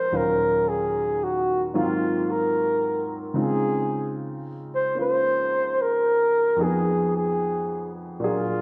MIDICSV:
0, 0, Header, 1, 3, 480
1, 0, Start_track
1, 0, Tempo, 808625
1, 76, Time_signature, 4, 2, 24, 8
1, 5114, End_track
2, 0, Start_track
2, 0, Title_t, "Flugelhorn"
2, 0, Program_c, 0, 56
2, 0, Note_on_c, 0, 72, 88
2, 98, Note_on_c, 0, 70, 92
2, 107, Note_off_c, 0, 72, 0
2, 406, Note_on_c, 0, 68, 75
2, 415, Note_off_c, 0, 70, 0
2, 735, Note_on_c, 0, 66, 83
2, 744, Note_off_c, 0, 68, 0
2, 964, Note_off_c, 0, 66, 0
2, 1056, Note_on_c, 0, 65, 84
2, 1373, Note_on_c, 0, 70, 81
2, 1382, Note_off_c, 0, 65, 0
2, 1892, Note_off_c, 0, 70, 0
2, 2023, Note_on_c, 0, 68, 85
2, 2461, Note_off_c, 0, 68, 0
2, 2818, Note_on_c, 0, 72, 86
2, 2949, Note_off_c, 0, 72, 0
2, 2975, Note_on_c, 0, 72, 96
2, 3453, Note_on_c, 0, 70, 84
2, 3462, Note_off_c, 0, 72, 0
2, 3937, Note_on_c, 0, 68, 77
2, 3946, Note_off_c, 0, 70, 0
2, 4251, Note_off_c, 0, 68, 0
2, 4256, Note_on_c, 0, 68, 70
2, 4706, Note_off_c, 0, 68, 0
2, 4899, Note_on_c, 0, 65, 80
2, 5114, Note_off_c, 0, 65, 0
2, 5114, End_track
3, 0, Start_track
3, 0, Title_t, "Grand piano"
3, 0, Program_c, 1, 0
3, 0, Control_c, 1, 64, 127
3, 0, Note_on_c, 1, 46, 56
3, 0, Note_on_c, 1, 53, 40
3, 0, Note_on_c, 1, 56, 53
3, 0, Note_on_c, 1, 60, 34
3, 0, Note_on_c, 1, 61, 50
3, 0, Note_on_c, 1, 63, 47
3, 0, Note_on_c, 1, 70, 39
3, 0, Note_on_c, 1, 72, 59
3, 64, Note_off_c, 1, 46, 0
3, 70, Note_off_c, 1, 61, 0
3, 71, Note_off_c, 1, 53, 0
3, 71, Note_on_c, 1, 39, 47
3, 73, Note_on_c, 1, 46, 47
3, 77, Note_off_c, 1, 60, 0
3, 77, Note_on_c, 1, 54, 45
3, 79, Note_on_c, 1, 61, 47
3, 80, Note_off_c, 1, 70, 0
3, 80, Note_on_c, 1, 77, 54
3, 82, Note_off_c, 1, 56, 0
3, 83, Control_c, 1, 64, 0
3, 84, Note_off_c, 1, 63, 0
3, 84, Note_off_c, 1, 72, 0
3, 184, Control_c, 1, 64, 127
3, 1023, Note_off_c, 1, 54, 0
3, 1028, Note_off_c, 1, 39, 0
3, 1029, Note_off_c, 1, 46, 0
3, 1032, Note_off_c, 1, 61, 0
3, 1032, Note_off_c, 1, 77, 0
3, 1032, Note_on_c, 1, 44, 54
3, 1032, Note_on_c, 1, 54, 54
3, 1033, Note_on_c, 1, 51, 50
3, 1035, Note_on_c, 1, 60, 48
3, 1036, Control_c, 1, 64, 0
3, 1036, Note_on_c, 1, 58, 53
3, 1041, Note_on_c, 1, 65, 65
3, 1160, Control_c, 1, 64, 127
3, 1980, Note_off_c, 1, 60, 0
3, 1982, Note_on_c, 1, 49, 53
3, 1985, Note_off_c, 1, 65, 0
3, 1986, Note_off_c, 1, 44, 0
3, 1986, Note_off_c, 1, 51, 0
3, 1986, Note_off_c, 1, 54, 0
3, 1987, Note_on_c, 1, 56, 50
3, 1988, Note_off_c, 1, 58, 0
3, 1989, Note_on_c, 1, 60, 53
3, 1989, Note_on_c, 1, 63, 47
3, 1992, Control_c, 1, 64, 0
3, 1994, Note_on_c, 1, 65, 55
3, 2088, Control_c, 1, 64, 127
3, 2937, Note_on_c, 1, 58, 41
3, 2946, Note_on_c, 1, 61, 40
3, 2949, Note_off_c, 1, 65, 0
3, 2958, Note_on_c, 1, 65, 48
3, 3896, Note_on_c, 1, 41, 50
3, 3900, Note_off_c, 1, 58, 0
3, 3903, Note_on_c, 1, 53, 47
3, 3904, Note_off_c, 1, 49, 0
3, 3904, Note_off_c, 1, 61, 0
3, 3906, Note_off_c, 1, 56, 0
3, 3906, Note_off_c, 1, 63, 0
3, 3907, Note_off_c, 1, 60, 0
3, 3910, Note_on_c, 1, 59, 47
3, 3911, Note_off_c, 1, 65, 0
3, 3912, Control_c, 1, 64, 0
3, 3915, Note_on_c, 1, 63, 43
3, 3923, Note_on_c, 1, 68, 55
3, 4004, Control_c, 1, 64, 127
3, 4866, Note_on_c, 1, 46, 58
3, 4867, Note_off_c, 1, 41, 0
3, 4871, Note_off_c, 1, 53, 0
3, 4874, Note_off_c, 1, 59, 0
3, 4876, Note_on_c, 1, 58, 50
3, 4877, Note_off_c, 1, 63, 0
3, 4878, Control_c, 1, 64, 0
3, 4881, Note_off_c, 1, 68, 0
3, 4881, Note_on_c, 1, 62, 51
3, 4889, Note_on_c, 1, 54, 50
3, 4892, Note_on_c, 1, 68, 61
3, 4991, Control_c, 1, 64, 127
3, 5114, Note_off_c, 1, 46, 0
3, 5114, Note_off_c, 1, 54, 0
3, 5114, Note_off_c, 1, 58, 0
3, 5114, Note_off_c, 1, 62, 0
3, 5114, Note_off_c, 1, 68, 0
3, 5114, End_track
0, 0, End_of_file